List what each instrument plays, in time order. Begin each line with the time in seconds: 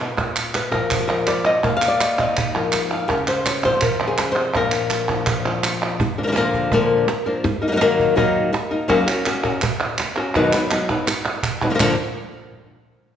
Already playing: nylon-string guitar B3 B4
0.00 nylon-string guitar B2, cajon slap, clap
0.17 nylon-string guitar A#2, cajon bass, cajon slap
0.36 clap
0.55 nylon-string guitar B4, cajon slap, clap
0.72 nylon-string guitar F3 A#4, cajon bass, clap
0.91 nylon-string guitar D4, cajon bass, clap
1.00 nylon-string guitar F4
1.08 nylon-string guitar F3 A#4, clap
1.27 nylon-string guitar D5, cajon slap, clap
1.46 nylon-string guitar D#5, cajon slap
1.63 nylon-string guitar A#3 F5, cajon bass, clap
1.77 nylon-string guitar F5
1.82 clap
1.88 nylon-string guitar D5
2.01 nylon-string guitar D#5, cajon slap, clap
2.19 nylon-string guitar D#4 F5, cajon bass, clap
2.37 nylon-string guitar D#5, cajon bass, clap
2.55 nylon-string guitar F3 A#4, clap
2.72 cajon slap, clap
2.91 nylon-string guitar F5, cajon slap, clap
3.08 nylon-string guitar C#3 A#4, cajon bass, cajon slap
3.27 nylon-string guitar C5, cajon slap, clap
3.46 nylon-string guitar C#5, cajon slap, clap
3.63 nylon-string guitar F3 C5, cajon bass, clap
3.77 nylon-string guitar C5
3.81 nylon-string guitar A#4, cajon bass, clap
3.99 nylon-string guitar C#3, clap
4.07 nylon-string guitar G#4
4.18 nylon-string guitar C#3, cajon slap, clap
4.32 nylon-string guitar C5, clap
4.36 nylon-string guitar C3, cajon slap
4.55 nylon-string guitar A#2 F3 D4 F4 A#4, cajon bass, cajon slap
4.72 clap
4.90 cajon slap, clap
5.09 nylon-string guitar F3 D4, cajon bass, clap
5.26 cajon bass, clap
5.46 nylon-string guitar F3, clap
5.63 cajon slap, clap
5.82 cajon slap, clap
6.00 muted nylon-string guitar stroke, cajon bass
6.18 nylon-string guitar F3 A#3 D4 A#4, cajon slap
6.23 nylon-string guitar D3 F3 A#3 D4 A#4
6.27 nylon-string guitar D3 F3 A#3 D4 A#4
6.32 nylon-string guitar D3 F3 A#3 D4 A#4
6.36 nylon-string guitar A#2 D3 F3 A#3 D4 A#4, cajon slap
6.54 cajon bass
6.72 nylon-string guitar A#2 D3 F3 A#3 D4 A#4, cajon bass
7.08 muted nylon-string guitar stroke, cajon slap
7.26 nylon-string guitar F3 A#3 D4 A#4
7.44 muted nylon-string guitar stroke, cajon bass, cajon slap
7.62 nylon-string guitar A#3 D#4 A#4, cajon slap
7.68 nylon-string guitar F#3 A#3 D#4 A#4
7.72 nylon-string guitar F#3 A#3 D#4 A#4
7.76 nylon-string guitar F#3 A#3 D#4 A#4
7.81 nylon-string guitar D#3 F#3 A#3 D#4 A#4, cajon slap
8.00 cajon bass
8.15 nylon-string guitar D#3 F#3 A#3 D#4 A#4, cajon bass
8.53 muted nylon-string guitar stroke, cajon slap
8.71 nylon-string guitar A#3 D#4 A#4
8.88 nylon-string guitar F#3 A#3 C#4 F#4 A#4, cajon bass, cajon slap
9.07 nylon-string guitar C#4 F#4 A#4, cajon slap, clap
9.26 nylon-string guitar A#3 C#4 F#4 A#4, cajon slap, clap
9.44 nylon-string guitar C#4 F#4 A#4, cajon bass, clap
9.62 muted nylon-string guitar stroke, cajon bass, clap
9.80 clap
9.98 cajon slap, clap
10.16 nylon-string guitar C#4 F#4 A#4, cajon slap, clap
10.35 nylon-string guitar B2 D#3 F#3 B3 D#4 B4, cajon bass, cajon slap
10.53 nylon-string guitar F#3 B3 D#4 B4, cajon slap, clap
10.71 nylon-string guitar F#3 B3 D#4 B4, cajon slap, clap
10.89 nylon-string guitar F#3 B3 D#4 B4, cajon bass, clap
11.07 muted nylon-string guitar stroke, cajon slap, clap
11.25 cajon slap, clap
11.43 cajon bass, clap
11.62 nylon-string guitar F#3 B3 D#4 B4, cajon bass, clap
11.70 nylon-string guitar D3 F3 A#3 D4 A#4
11.74 nylon-string guitar D3 F3 A#3 D4 A#4
11.79 nylon-string guitar A#2 D3 F3 A#3 D4 A#4, cajon bass, clap